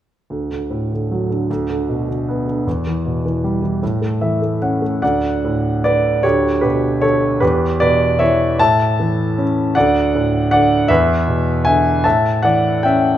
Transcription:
0.30 1.46 D2 soft
0.51 0.90 D3 soft
0.70 1.47 A2 soft
0.92 1.29 D3 soft
1.11 1.49 F#3 soft
1.30 1.49 D3 soft
1.50 2.63 D2 soft
1.70 2.07 D3 soft
1.89 2.64 B2 soft
2.08 2.46 D3 soft
2.28 2.65 B3 soft
2.48 2.66 D3 soft
2.67 3.79 E2 soft
2.87 3.24 E3 soft
3.06 3.80 B2 soft
3.25 3.61 E3 soft
3.44 3.81 G3 soft
3.62 3.81 E3 soft
3.83 4.99 A2 soft
4.01 4.40 A3 soft
4.21 5.00 E3 soft
4.21 4.58 E5 soft
4.42 4.80 A3 soft
4.62 5.01 C#4 soft
4.62 5.00 F#5 soft
4.82 5.02 A3 soft
5.02 6.20 D2 soft
5.02 5.80 D5 soft
5.02 5.80 F#5 medium
5.44 6.22 A2 soft
5.84 6.23 D3 soft
5.84 6.21 B4 soft
5.84 6.21 D5 medium
6.23 7.39 D2 soft
6.23 6.61 G4 soft
6.23 6.64 C#5 medium
6.61 7.40 B2 soft
6.61 6.99 G4 soft
6.61 7.03 B4 medium
7.01 7.41 D3 soft
7.01 7.39 A4 soft
7.01 7.43 C#5 medium
7.40 8.56 E2 soft
7.40 7.78 G4 soft
7.40 7.80 B4 medium
7.80 8.57 B2 soft
7.80 8.18 B4 medium
7.80 8.21 D5 medium
8.19 8.59 E3 soft
8.19 8.56 C#5 medium
8.19 8.59 E5 medium
8.59 9.72 A2 medium
8.59 9.43 E5 medium
8.59 9.42 A5 medium
8.99 9.74 E3 soft
9.38 9.75 C#4 soft
9.75 10.87 D2 medium
9.75 10.48 D5 medium
9.75 10.50 F#5 medium
10.15 10.88 A2 soft
10.51 10.89 D3 soft
10.51 10.87 D5 medium
10.51 10.91 F#5 medium
10.88 12.02 E2 medium
10.88 11.62 B4 medium
10.88 11.65 E5 medium
11.28 12.02 B2 soft
11.65 12.04 D3 soft
11.65 12.02 E5 medium
11.65 12.05 G#5 medium
12.04 13.18 A2 soft
12.04 12.42 E5 medium
12.04 12.45 A5 medium
12.43 13.18 E3 soft
12.43 12.81 D5 medium
12.43 12.84 F#5 medium
12.83 13.18 C#4 soft
12.83 13.18 E5 medium
12.83 13.18 G5 medium

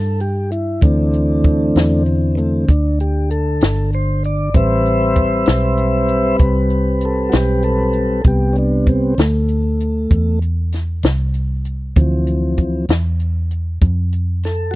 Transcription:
0.00 0.79 G2 medium
0.00 0.20 A4 medium
0.20 0.51 G4 medium
0.20 closed hi-hat medium
0.52 0.82 E4 medium
0.52 closed hi-hat medium
0.81 1.72 D2 medium
0.81 4.50 D3 soft
0.81 2.36 E3 soft
0.81 2.03 A3 medium
0.81 2.38 C4 soft
0.81 2.03 D4 medium
0.81 kick medium
0.81 closed hi-hat medium
1.13 closed hi-hat medium
1.44 kick medium
1.44 closed hi-hat medium
1.76 2.66 E2 medium
1.76 snare loud
1.76 closed hi-hat medium
2.06 closed hi-hat medium
2.35 2.65 E3 soft
2.35 2.66 A3 soft
2.35 2.39 B3 medium
2.35 2.68 C4 medium
2.35 closed hi-hat medium
2.69 3.59 D2 medium
2.69 2.99 D4 medium
2.69 kick medium
2.69 closed hi-hat medium
3.00 3.30 G4 medium
3.00 closed hi-hat medium
3.30 3.91 A4 medium
3.30 closed hi-hat medium
3.61 4.52 G1 medium
3.61 snare loud
3.61 closed hi-hat medium
3.93 4.23 C5 medium
3.93 closed hi-hat medium
4.24 4.54 D5 medium
4.24 closed hi-hat soft
4.54 5.44 A1 medium
4.54 8.21 G3 soft
4.54 8.21 C4 soft
4.54 8.22 B4 medium
4.54 6.37 C5 medium
4.54 6.37 E5 medium
4.54 kick medium
4.54 closed hi-hat medium
4.86 closed hi-hat medium
5.16 kick medium
5.16 closed hi-hat medium
5.46 6.37 B1 medium
5.46 snare loud
5.46 closed hi-hat medium
5.77 closed hi-hat medium
6.08 closed hi-hat medium
6.39 7.30 C2 medium
6.39 kick medium
6.39 closed hi-hat medium
6.70 closed hi-hat medium
7.01 closed hi-hat medium
7.05 7.33 A4 medium
7.29 8.23 B1 medium
7.29 7.33 F#4 medium
7.29 closed hi-hat medium
7.33 7.63 G4 medium
7.33 snare loud
7.63 8.24 A4 medium
7.63 closed hi-hat medium
7.93 closed hi-hat soft
8.24 9.15 C2 medium
8.24 9.14 C3 soft
8.24 9.15 G3 soft
8.24 9.15 B3 medium
8.24 8.56 G4 medium
8.24 kick medium
8.24 closed hi-hat medium
8.53 8.57 C#4 medium
8.53 closed hi-hat medium
8.58 8.87 D4 medium
8.87 9.18 C4 medium
8.87 kick medium
8.87 closed hi-hat medium
9.18 10.08 D2 medium
9.18 10.39 A3 medium
9.18 snare loud
9.18 closed hi-hat medium
9.49 closed hi-hat medium
9.80 closed hi-hat medium
10.11 11.01 E2 medium
10.11 kick medium
10.11 closed hi-hat medium
10.42 closed hi-hat medium
10.72 snare soft
10.72 closed hi-hat medium
11.03 11.94 C2 medium
11.03 snare loud
11.03 closed hi-hat medium
11.34 closed hi-hat medium
11.65 closed hi-hat soft
11.96 12.87 D2 medium
11.96 12.85 E3 soft
11.96 12.86 F3 soft
11.96 12.86 C4 medium
11.96 kick loud
11.96 closed hi-hat medium
12.27 closed hi-hat medium
12.57 kick medium
12.57 closed hi-hat medium
12.89 13.79 E2 medium
12.89 snare loud
12.89 closed hi-hat medium
13.20 closed hi-hat medium
13.51 closed hi-hat medium
13.81 14.72 F2 medium
13.81 kick medium
13.81 closed hi-hat medium
14.13 closed hi-hat medium
14.43 14.75 A4 medium
14.43 snare soft
14.43 closed hi-hat soft
14.71 14.75 F#4 medium

